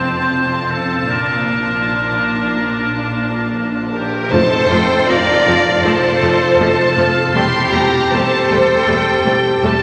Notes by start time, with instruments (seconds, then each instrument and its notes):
Already playing: double bass section F1, cello section F2, harp F2 C3 C4, viola section C4, violin section F4 A5, oboe C5
0.03 harp F4
0.31 harp C3
0.57 harp C4
0.71 oboe A4
0.82 harp C3
1.09 double bass section A#1, cello section A#2, harp A#2, viola section D4, oboe A#4
1.36 harp F3
1.63 harp F4
1.90 harp F3
2.44 harp F3
2.71 harp A#2
2.98 harp D4
3.25 harp F4
3.52 harp F3
3.91 flute G4, violin section A#4
4.05 harp F3
4.31 double bass section F1, harp F2, cello section F2, viola section F3 A3, french horn section C4 F4, clarinet F4, flute A4, violin section C5 A5, oboe A5, tam-tam
4.70 double bass section F1, cello section F2, viola section F3 A3, harp C4, violin section G5
5.08 double bass section F1, cello section F2, viola section F3 C4, flute A#4, violin section D5 F5
5.46 double bass section F1, cello section F2, viola section F3 C4
5.84 double bass section F1, cello section F2, harp C3, viola section F3 A3, flute A4, violin section C5 A5
6.21 double bass section F1, cello section F2, viola section F3 A3, harp C4
6.59 double bass section F1, cello section F2, viola section F3 A3, violin section A5
6.96 double bass section F1, cello section F2, viola section F3 A3, flute F4, violin section A4
7.33 double bass section E1, cello section E2, harp E2, viola section G3 A3, flute E4, french horn section G4, clarinet G4, violin section G4 C6
7.72 double bass section E1, cello section E2, viola section G3 A3, harp C4, violin section A#5
8.11 double bass section E1, cello section E2, viola section G3 A3, flute A4, violin section C5 A5
8.49 double bass section E1, cello section E2, viola section G3 A3, violin section G5
8.87 double bass section E1, cello section E2, viola section G3 A3, harp G3
9.25 double bass section E1, cello section E2, viola section G3 A3, harp C4
9.63 double bass section E1, cello section E2, viola section G3 A3, violin section A5